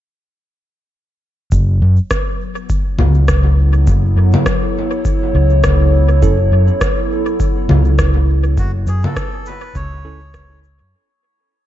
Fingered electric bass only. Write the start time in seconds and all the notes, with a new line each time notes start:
1.52 F#1
1.82 F#2
3.00 C#2
3.87 F#1
4.17 F#2
5.35 C#2
6.23 F#1
6.52 F#2
7.70 C#2
8.58 F#1
8.87 F#2
9.75 C#2
10.81 F#2